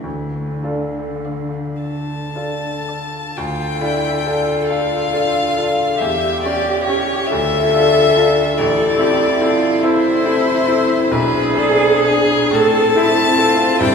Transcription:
0.03 0.61 D2 soft
0.03 2.84 D3 medium
0.63 2.33 D4 soft
0.63 2.33 F4 soft
0.63 2.33 A4 soft
1.25 1.69 D5 soft
1.25 1.69 F5 soft
1.82 3.38 A5 medium
2.36 3.33 D4 soft
2.36 3.33 F4 soft
2.36 3.33 A4 soft
2.89 3.25 D5 soft
3.36 3.80 D2 medium
3.36 3.82 F4 medium
3.36 5.96 A4 medium
3.36 4.69 G5 medium
3.81 4.21 D4 soft
3.81 4.24 E4 medium
3.81 4.21 F4 soft
3.81 4.21 A4 soft
4.25 4.65 D4 soft
4.25 5.97 F4 medium
4.25 4.65 F4 soft
4.25 4.65 A4 medium
4.68 5.09 D4 soft
4.68 5.09 F4 soft
4.68 5.10 A4 soft
4.68 6.00 F5 medium
5.13 5.53 D4 soft
5.13 5.53 F4 soft
5.13 5.53 A4 soft
5.57 5.97 D4 soft
5.57 5.97 F4 soft
5.57 5.97 A4 soft
5.98 6.43 E2 medium
5.98 7.27 G4 medium
5.98 7.31 G4 medium
5.98 6.43 E5 medium
6.44 6.84 C#4 soft
6.44 6.84 G4 medium
6.44 6.84 D5 medium
6.84 7.29 C#5 medium
6.89 7.27 C#4 soft
6.89 7.27 G4 medium
7.27 8.59 F4 medium
7.27 8.59 A4 medium
7.27 8.59 E5 loud
7.32 7.73 D2 medium
7.74 8.13 D4 soft
7.74 8.13 F4 soft
7.74 8.13 A4 soft
8.16 8.55 D4 soft
8.16 8.56 F4 soft
8.16 8.56 A4 soft
8.58 8.99 A1 medium
8.58 11.10 E4 medium
8.58 9.02 A4 medium
8.58 9.85 D5 medium
8.99 9.38 C4 soft
8.99 9.38 E4 medium
8.99 9.42 G4 medium
8.99 9.38 A4 medium
9.40 9.80 C4 medium
9.40 9.80 E4 medium
9.40 9.87 F4 medium
9.40 9.80 A4 medium
9.83 10.22 C4 medium
9.83 10.22 E4 medium
9.83 11.13 E4 medium
9.83 10.22 A4 medium
9.83 11.14 C5 loud
10.25 10.64 C4 medium
10.25 10.63 E4 soft
10.25 10.64 A4 medium
10.67 11.07 C4 medium
10.67 11.07 E4 soft
10.67 11.07 A4 medium
11.11 11.56 B1 medium
11.11 12.54 D4 medium
11.11 12.55 G#4 loud
11.11 11.56 B4 loud
11.56 12.01 D4 medium
11.56 12.02 G#4 medium
11.56 12.09 A4 medium
12.04 12.48 D4 medium
12.04 12.49 G#4 medium
12.04 12.57 G#4 loud
12.51 12.94 A2 medium
12.51 13.95 C4 medium
12.51 12.99 A4 medium
12.55 13.81 A5 loud
12.95 13.34 C4 medium
12.95 13.34 E4 medium
12.95 13.39 E4 medium
12.95 13.35 A4 medium
13.38 13.77 C4 medium
13.38 13.77 E4 medium
13.38 13.82 F4 medium
13.38 13.77 A4 medium
13.80 13.95 G2 medium
13.80 13.95 E4 medium
13.80 13.95 G5 loud

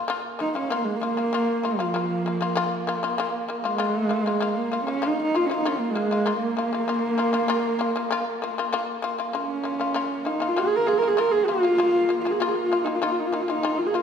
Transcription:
0.07 5.02 A#3 medium
0.07 0.33 A#3 loud
0.07 0.34 F4 loud
0.39 0.51 A#3 medium
0.39 0.54 D#4 medium
0.39 0.52 F4 medium
0.55 0.67 A#3 medium
0.55 0.74 C#4 medium
0.55 0.68 F4 medium
0.70 0.95 A#3 medium
0.70 0.86 A#3 medium
0.70 0.96 F4 medium
0.84 0.98 G#3 medium
0.96 1.02 A#3 medium
1.01 1.13 A#3 medium
1.01 1.67 A#3 medium
1.01 1.14 F4 medium
1.17 1.29 A#3 medium
1.17 1.30 F4 medium
1.33 1.57 A#3 medium
1.33 1.58 F4 medium
1.63 2.87 F3 medium
1.63 1.75 A#3 medium
1.63 1.76 F4 medium
1.79 1.91 A#3 medium
1.79 1.91 F4 medium
1.94 2.18 A#3 medium
1.94 2.19 F4 medium
2.26 2.38 A#3 medium
2.26 2.38 F4 medium
2.41 2.53 A#3 medium
2.41 2.53 F4 medium
2.55 2.80 A#3 loud
2.55 2.81 F4 loud
2.87 2.99 A#3 medium
2.87 3.00 F4 medium
3.03 3.15 A#3 medium
3.03 3.15 F4 medium
3.18 3.42 A#3 loud
3.18 3.43 F4 loud
3.48 3.61 A#3 medium
3.48 3.61 F4 medium
3.64 4.57 G#3 medium
3.64 3.76 A#3 medium
3.64 3.77 F4 medium
3.78 4.03 A#3 medium
3.78 4.04 F4 loud
4.09 4.22 A#3 medium
4.09 4.22 F4 medium
4.26 4.38 A#3 medium
4.26 4.39 F4 medium
4.40 4.65 A#3 medium
4.40 4.66 F4 medium
4.55 4.84 A#3 medium
4.72 4.84 A#3 medium
4.72 4.84 F4 medium
4.84 4.99 A#3 medium
4.84 5.09 C#4 medium
4.84 5.00 F4 medium
5.02 5.27 A#3 medium
5.02 9.95 A#3 medium
5.02 5.27 F4 loud
5.08 5.22 D#4 medium
5.22 5.37 D#4 medium
5.34 5.46 A#3 medium
5.34 5.48 F4 medium
5.34 5.46 F4 medium
5.46 5.61 A#3 medium
5.46 5.56 C#4 medium
5.51 5.62 F4 medium
5.56 5.69 D#4 medium
5.65 5.89 A#3 medium
5.65 5.80 C#4 medium
5.65 5.90 F4 loud
5.79 5.92 A#3 medium
5.91 6.37 G#3 medium
5.95 6.07 A#3 medium
5.95 6.08 F4 medium
6.11 6.23 A#3 medium
6.11 6.23 F4 medium
6.26 6.50 A#3 medium
6.26 6.51 F4 medium
6.37 8.65 A#3 medium
6.57 6.69 A#3 medium
6.57 6.70 F4 medium
6.73 6.84 A#3 medium
6.73 6.85 F4 medium
6.88 7.12 A#3 medium
6.88 7.13 F4 medium
7.18 7.30 A#3 medium
7.18 7.31 F4 medium
7.33 7.45 A#3 medium
7.33 7.46 F4 medium
7.48 7.73 A#3 loud
7.48 7.74 F4 loud
7.79 7.91 A#3 medium
7.79 7.92 F4 medium
7.96 8.07 A#3 medium
7.96 8.08 F4 medium
8.11 8.35 A#3 loud
8.11 8.36 F4 loud
8.42 8.54 A#3 medium
8.42 8.54 F4 medium
8.58 8.69 A#3 medium
8.58 8.70 F4 medium
8.73 8.96 A#3 loud
8.73 8.97 F4 loud
9.02 9.14 A#3 medium
9.02 9.15 F4 medium
9.18 9.30 A#3 medium
9.18 9.31 F4 medium
9.33 9.58 A#3 medium
9.33 10.28 C#4 medium
9.33 9.58 F4 medium
9.64 9.76 A#3 medium
9.64 9.77 F4 medium
9.80 9.91 A#3 medium
9.80 9.92 F4 medium
9.94 10.19 A#3 medium
9.94 14.02 A#3 medium
9.94 10.20 F4 medium
10.25 10.37 A#3 medium
10.25 10.49 D#4 medium
10.25 10.38 F4 medium
10.40 10.52 A#3 medium
10.40 10.53 F4 medium
10.48 10.63 F4 medium
10.56 10.80 A#3 medium
10.56 10.81 F4 medium
10.62 10.77 G#4 medium
10.76 10.88 A#4 medium
10.87 10.99 A#3 medium
10.87 10.99 F4 medium
10.87 10.99 G#4 medium
10.98 11.09 A#4 medium
11.02 11.14 A#3 medium
11.02 11.15 F4 medium
11.08 11.21 G#4 medium
11.17 11.41 A#3 medium
11.17 11.42 F4 medium
11.17 11.33 A#4 medium
11.31 11.47 G#4 medium
11.45 11.60 A#3 medium
11.45 12.22 F4 loud
11.45 11.60 F4 medium
11.63 11.75 A#3 medium
11.63 11.76 F4 medium
11.78 12.03 A#3 medium
11.78 12.03 F4 medium
12.09 12.21 A#3 medium
12.09 12.22 F4 medium
12.23 12.37 A#3 medium
12.23 12.33 F4 medium
12.23 12.38 F4 medium
12.31 12.41 G#4 medium
12.40 12.64 A#3 medium
12.40 12.49 F4 medium
12.40 12.65 F4 medium
12.48 12.57 G#4 medium
12.55 12.86 F4 medium
12.72 12.83 A#3 medium
12.72 12.84 F4 medium
12.84 12.98 A#3 medium
12.84 12.96 D#4 medium
12.84 12.98 F4 medium
12.95 13.04 F4 medium
13.02 13.26 A#3 medium
13.02 13.12 D#4 medium
13.02 13.26 F4 medium
13.11 13.21 F4 medium
13.19 13.28 D#4 medium
13.26 13.36 F4 medium
13.32 13.44 A#3 medium
13.32 13.43 D#4 medium
13.32 13.45 F4 medium
13.41 13.52 F4 medium
13.48 13.60 A#3 medium
13.48 13.80 D#4 medium
13.48 13.60 F4 medium
13.63 13.87 A#3 medium
13.63 13.88 F4 loud
13.78 13.88 F4 medium
13.86 13.96 G#4 medium
13.94 14.02 A#3 medium
13.94 14.02 F4 medium

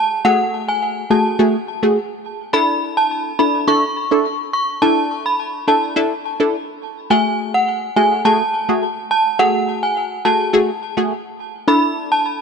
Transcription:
0.25 1.04 A3 medium
0.25 1.04 F#4 medium
0.25 1.04 G#4 loud
0.25 0.37 F#5 medium
0.68 0.80 G#5 medium
1.10 1.37 A3 medium
1.10 1.37 F#4 medium
1.10 1.37 G#4 medium
1.10 1.23 A5 medium
1.39 1.56 A3 loud
1.39 1.56 F#4 medium
1.39 1.56 G#4 loud
1.83 1.98 A3 medium
1.83 1.98 F#4 medium
1.83 1.99 G#4 medium
2.53 3.33 D4 medium
2.53 3.33 E4 medium
2.53 3.33 A4 loud
2.53 2.66 B5 loud
2.97 3.08 A5 medium
3.39 3.66 D4 medium
3.39 3.66 E4 medium
3.39 3.66 A4 medium
3.39 3.51 B5 medium
3.67 3.85 D4 medium
3.67 3.85 E4 medium
3.67 3.85 A4 loud
3.67 4.09 C#6 loud
4.11 4.27 D4 medium
4.11 4.27 E4 medium
4.11 4.27 A4 medium
4.53 4.66 C#6 medium
4.82 5.61 D4 medium
4.82 5.61 E4 medium
4.82 5.62 A4 loud
4.82 4.94 A5 loud
5.26 5.37 B5 medium
5.68 5.94 D4 medium
5.68 5.94 E4 medium
5.68 5.94 A4 medium
5.68 5.80 A5 medium
5.96 6.13 D4 loud
5.96 6.13 E4 medium
5.96 6.14 A4 loud
6.40 6.56 D4 medium
6.40 6.56 E4 medium
6.40 6.56 A4 medium
7.10 7.90 A3 loud
7.10 7.90 F#4 medium
7.10 7.90 G#4 loud
7.10 7.23 G#5 loud
7.54 7.65 F#5 medium
7.96 8.23 A3 medium
7.96 8.23 F#4 medium
7.96 8.23 G#4 medium
7.96 8.09 G#5 medium
8.25 8.42 A3 loud
8.25 8.42 F#4 medium
8.25 8.42 G#4 loud
8.25 8.66 A5 medium
8.69 8.84 A3 medium
8.69 8.84 F#4 medium
8.69 8.85 G#4 medium
9.11 9.23 A5 medium
9.39 10.18 A3 loud
9.39 10.19 F#4 medium
9.39 10.19 G#4 loud
9.39 9.52 F#5 loud
9.83 9.94 G#5 medium
10.25 10.51 A3 medium
10.25 10.52 F#4 medium
10.25 10.52 G#4 medium
10.25 10.37 A5 medium
10.53 10.70 A3 medium
10.53 10.71 F#4 medium
10.53 10.71 G#4 loud
10.97 11.13 A3 medium
10.97 11.13 F#4 medium
10.97 11.13 G#4 medium
11.68 12.41 D4 loud
11.68 12.41 E4 medium
11.68 12.41 A4 loud
11.68 11.80 B5 loud
12.12 12.23 A5 medium

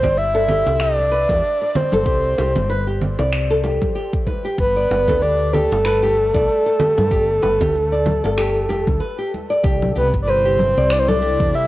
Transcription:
0.00 0.62 G1 medium
0.00 0.19 C5 loud
0.00 0.33 D5 medium
0.00 kick medium
0.00 low conga medium
0.00 shaker medium
0.17 0.82 E5 loud
0.17 high conga soft
0.17 shaker medium
0.35 0.48 A4 medium
0.35 shaker soft
0.48 0.79 G4 medium
0.48 low conga medium
0.66 1.25 C2 medium
0.66 high bongo medium
0.66 shaker medium
0.80 0.97 G4 medium
0.80 1.78 D5 loud
0.80 finger snap medium
0.80 shaker medium
0.98 high conga soft
0.98 shaker soft
1.12 1.28 B4 medium
1.29 1.41 E2 medium
1.29 1.43 G4 medium
1.29 kick medium
1.29 high bongo medium
1.29 high conga soft
1.29 shaker medium
1.43 shaker soft
1.62 1.91 D5 medium
1.62 shaker soft
1.75 2.70 C5 medium
1.75 high conga medium
1.75 low conga medium
1.92 2.04 G1 medium
1.92 2.06 A4 medium
1.92 high bongo soft
1.92 low conga medium
1.92 shaker medium
2.06 2.34 C2 medium
2.06 2.36 G4 medium
2.06 kick loud
2.06 shaker medium
2.24 shaker soft
2.38 2.54 C2 medium
2.38 2.55 G4 medium
2.38 high bongo medium
2.56 3.15 G1 loud
2.56 low conga medium
2.56 shaker medium
2.69 2.86 B4 medium
2.69 high conga soft
2.69 shaker soft
2.87 3.00 G4 medium
2.87 shaker soft
3.02 low conga medium
3.19 3.78 C2 medium
3.19 3.49 D5 medium
3.19 high bongo medium
3.19 shaker medium
3.33 finger snap medium
3.33 shaker soft
3.50 3.63 A4 loud
3.50 shaker soft
3.64 3.94 G4 medium
3.64 high bongo soft
3.64 high conga medium
3.82 kick medium
3.82 low conga medium
3.82 shaker medium
3.95 4.13 G4 medium
3.95 shaker soft
4.13 kick loud
4.13 shaker soft
4.27 4.43 B4 medium
4.27 kick medium
4.27 high conga medium
4.45 4.58 G4 medium
4.45 shaker medium
4.58 4.86 G1 loud
4.58 5.23 B4 loud
4.58 kick loud
4.58 shaker medium
4.76 5.06 D5 medium
4.76 shaker soft
4.90 5.06 G1 medium
4.90 high bongo medium
5.08 5.67 D2 medium
5.08 5.21 A4 loud
5.08 kick medium
5.08 low conga medium
5.08 shaker medium
5.21 5.52 G4 medium
5.21 5.55 D5 loud
5.21 high conga soft
5.21 shaker soft
5.40 shaker soft
5.53 5.70 G4 medium
5.53 9.01 A4 loud
5.53 low conga medium
5.71 6.30 G1 medium
5.71 high bongo medium
5.71 shaker medium
5.85 6.02 B4 medium
5.85 finger snap medium
5.85 shaker soft
6.03 6.16 G4 medium
6.03 high conga soft
6.03 shaker soft
6.34 6.46 B1 medium
6.34 6.64 D5 medium
6.34 kick medium
6.34 high bongo medium
6.34 high conga medium
6.34 shaker medium
6.48 shaker soft
6.66 6.79 A4 medium
6.66 shaker soft
6.79 7.10 G4 medium
6.79 high conga medium
6.79 low conga medium
6.98 7.09 G2 medium
6.98 high bongo medium
6.98 low conga medium
6.98 shaker medium
7.11 7.39 G1 loud
7.11 7.28 G4 medium
7.11 kick loud
7.11 shaker medium
7.30 shaker soft
7.42 7.59 G1 medium
7.42 7.59 B4 medium
7.42 high bongo medium
7.61 8.20 D2 medium
7.61 7.74 G4 medium
7.61 kick medium
7.61 low conga medium
7.61 shaker medium
7.75 high conga soft
7.75 shaker medium
7.92 8.22 D5 medium
7.92 shaker soft
8.06 low conga medium
8.24 8.69 G1 medium
8.24 8.37 A4 loud
8.24 high bongo medium
8.24 shaker medium
8.38 8.68 G4 medium
8.38 finger snap medium
8.38 shaker medium
8.56 shaker soft
8.69 8.89 F1 medium
8.69 8.86 G4 medium
8.69 high bongo medium
8.69 high conga medium
8.87 8.99 D2 medium
8.87 kick medium
8.87 low conga medium
8.87 shaker medium
9.00 9.17 B4 medium
9.00 shaker medium
9.18 9.32 G4 medium
9.18 shaker soft
9.34 high conga medium
9.50 9.64 D5 medium
9.50 shaker medium
9.64 9.92 C2 loud
9.64 11.67 C3 medium
9.64 9.94 G4 medium
9.64 kick loud
9.64 shaker soft
9.82 low conga medium
9.82 shaker soft
9.96 10.11 C2 medium
9.96 11.67 G3 medium
9.96 10.13 G4 medium
9.96 10.08 B4 medium
9.96 shaker medium
10.01 11.67 G4 medium
10.14 10.73 G1 loud
10.14 kick medium
10.14 shaker soft
10.21 11.67 E4 medium
10.21 10.31 D5 medium
10.27 10.44 B4 medium
10.27 10.93 C5 loud
10.27 shaker soft
10.45 10.58 G4 medium
10.45 shaker soft
10.59 low conga medium
10.59 shaker medium
10.77 11.36 C2 medium
10.77 11.07 D5 medium
10.77 shaker soft
10.90 11.00 D5 loud
10.90 finger snap medium
10.90 shaker soft
10.99 11.09 C5 medium
11.08 11.21 A4 medium
11.08 11.54 D5 loud
11.08 low conga medium
11.08 shaker soft
11.22 11.52 G4 medium
11.22 shaker medium
11.40 11.52 E2 medium
11.40 kick loud
11.40 shaker soft
11.54 11.67 G4 medium
11.54 11.67 E5 loud
11.54 shaker soft

